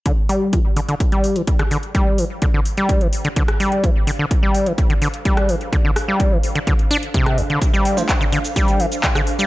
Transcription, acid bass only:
X:1
M:4/4
L:1/16
Q:1/4=127
K:Dm
V:1 name="Acid bass" clef=bass
D, z G,2 E, z D, D, z G,2 E, z D, D, z | G,2 E, z D, D, z G,2 E, z D, D, z G,2 | E, z D, D, z G,2 E, z D, D, z G,2 E, z | D, D, z G,2 E, z D, D, z D z C,2 D,, D, |
z G,2 E, z D, D, z G,2 E, z D, D, z G, |]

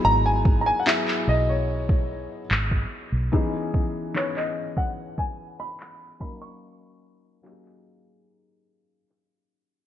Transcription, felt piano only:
X:1
M:4/4
L:1/8
Q:1/4=73
K:D#phr
V:1 name="Felt piano"
[F,B,DEG]2 [F,B,EG]4 z2 | [E,B,CDG]2 [E,B,CDB]4 z [F,A,CDA]- | [F,A,CDA]2 [F,A,CD=G^G]4 z2 |]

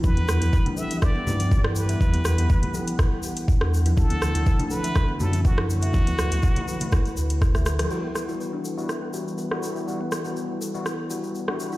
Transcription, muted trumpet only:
X:1
M:4/4
L:1/8
Q:"Swing 16ths" 1/4=122
K:Em
V:1 name="Muted trumpet"
B3 e d3 B- | B4- B z3 | A3 B2 A F F- | F6 z2 |
z8 | z8 |]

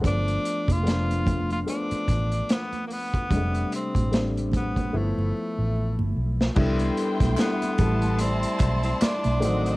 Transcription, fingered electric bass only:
X:1
M:4/4
L:1/16
Q:"Swing 16ths" 1/4=74
K:Gmix
V:1 name="Fingered electric bass" clef=bass
G,,,2 z F,,,4- F,,, z2 A,,,2 z4 | F,,,2 z A,,,4- A,,, G,,, G,,, z A,,,2 G,,, B,,,2 | C,,2 z B,,, z2 A,,,4 B,,,2 z B,,, A,,,2 |]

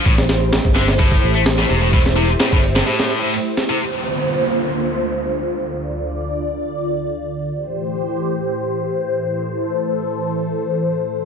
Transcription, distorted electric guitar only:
X:1
M:4/4
L:1/16
Q:1/4=128
K:Dm
V:1 name="Distorted electric guitar" clef=bass
A,, z4 z D, z A,,3 A, z A,, C, A,, | A,, z C, z A,, A,, z C, A,,3 A,, z3 C, | z16 | z16 |
z16 | z16 |]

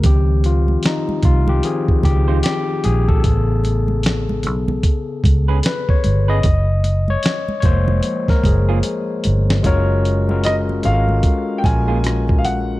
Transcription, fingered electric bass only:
X:1
M:4/4
L:1/8
Q:"Swing 16ths" 1/4=75
K:Db
V:1 name="Fingered electric bass" clef=bass
D,,2 z C,, z D,, z B,,, | =A,,,3 =B,,, z ^C,, z =G,,, | G,,,2 z F,,, z G,,, z =G,,, | G,,,3 A,,, z B,,,3 |]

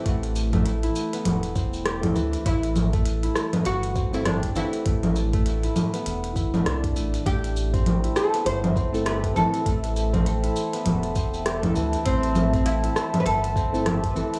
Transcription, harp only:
X:1
M:4/4
L:1/16
Q:"Swing 16ths" 1/4=100
K:Am
V:1 name="Harp"
A,3 A,2 E z B,3 C z G2 E,2 | A,3 A,2 E z B,3 C z G2 E,2 | A,3 A,2 E z B,3 E A, D z A, z | A,3 C z E z B,3 C z G2 E,2 |
A,3 C z E z B,3 C z G2 E,2 | A,3 C z E z B,3 C z G2 E,2 |]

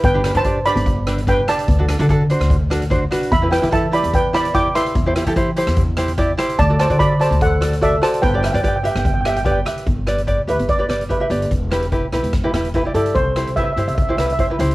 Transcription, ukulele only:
X:1
M:4/4
L:1/16
Q:"Swing 16ths" 1/4=147
K:G
V:1 name="Ukulele"
z [DGB] [DGB] [DGB] [DGd] z [DGB]2 z2 [DGB] z [DGB] z [DGB]2 | z [DFA] [DFA] [DFA] [DFA] z [DFc]2 z2 [DFA] z [DFc] z [DFB]2 | z [EGB] [EGB] [EGB] [EGA] z [EGB]2 z2 [EGd] z [EGd] z [EGB]2 | z [EGc] [EGc] [EGA] [EGc] z [EGc]2 z2 [EGc] z [EGd] z [EGc]2 |
z [FAd] [FAd] [FAd] [FAd] z [FAd]2 z2 [FAd] z [FAd] z [FAd]2 | z [GBd] [GBe] [GBd] [GBd] z [GBe]2 z2 [GBe] z [GBd] z [GBe]2 | z2 [GBd] z [GBd] z [GBe]2 z [GBd] [GBd] z [GBe] [GBe] [GBd]2 | z2 [EGB] z [EGB] z [EGB]2 z [EGB] [EGB] z [EGB] [EGd] [EGd]2 |
z2 [EGc] z [EGB] z [EGc]2 z [EGc] [EGB] z [EGc] [EGB] [EGc]2 |]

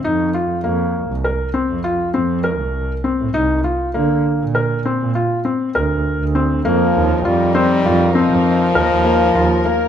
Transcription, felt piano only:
X:1
M:11/8
L:1/8
Q:1/4=100
K:Cdor
V:1 name="Felt piano"
E F B,2 B C F C B2 C | E F B,2 B C F C B2 C | B,2 F C F C2 B B, F B, |]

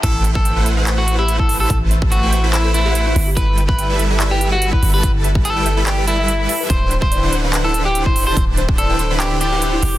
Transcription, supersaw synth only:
X:1
M:4/4
L:1/16
Q:"Swing 16ths" 1/4=144
K:Ador
V:1 name="Supersaw synth"
[A,EBcg]4- [A,EBcg] [A,EBcf]2 [A,EBcf]3 [A,EBcf]4- [A,EBcf] [A,EBca]- | [A,EBca]4- [A,EBca] [A,EBcg] z [A,EBcb]3 [A,EBca] [A,EBcf]3 z2 | [G,EABg]4- [G,EABg] [G,EABe]2 [G,EABe]3 [G,EABe]4- [G,EABe] [G,EABa]- | [G,EABa]4- [G,EABa] [G,EABg] z [G,EABb]3 [G,EABa] [G,EABe]4- [G,EABe] |
[D,DEBcg]4- [D,DEBcg] [D,DEBcf]2 [D,DEBcf]3 [D,DEBcf]4- [D,DEBcf] [D,DEBca]- | [D,DEBca]4- [D,DEBca] [D,DEBcg] z [D,DEBcb]3 [D,DEBca] [D,DEBcf]3 z2 |]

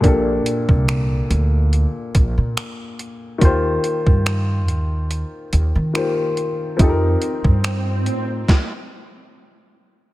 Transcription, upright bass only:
X:1
M:4/4
L:1/16
Q:"Swing 16ths" 1/4=71
K:Bb
V:1 name="Upright bass" clef=bass
B,,,2 z C,,3 D,,3 z B,,, B,, z4 | E,,2 z G,,3 E,,3 z E,, E, z4 | F,,2 z G,,3 A,,2 z8 |]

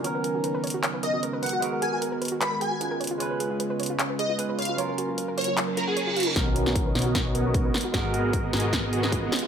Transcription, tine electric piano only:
X:1
M:4/4
L:1/8
Q:1/4=152
K:G#dor
V:1 name="Tine electric piano"
[D,B,CA]6 [G,B,FA]2 | [G,B,FA]6 [G,CEB]2 | [G,CEB]6 [G,CEB]2 | [F,CEA]6 z2 |
[D,B,CA]6 [G,B,FA]2 | [G,B,FA]6 [G,CEB]2 |]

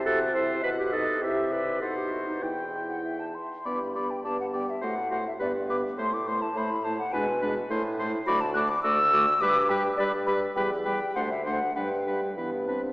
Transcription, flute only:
X:1
M:2/4
L:1/16
Q:1/4=103
K:Em
V:1 name="Flute"
e4 ^d2 z2 | e4 f4 | g2 g f e a c'2 | [K:G] b2 b g a f g e |
f2 f e d2 d'2 | c' d' c' a b2 a f | ^g2 z6 | b a f' d' e'4 |
d'2 g2 d2 b2 | g2 g2 f e f2 | g4 z4 |]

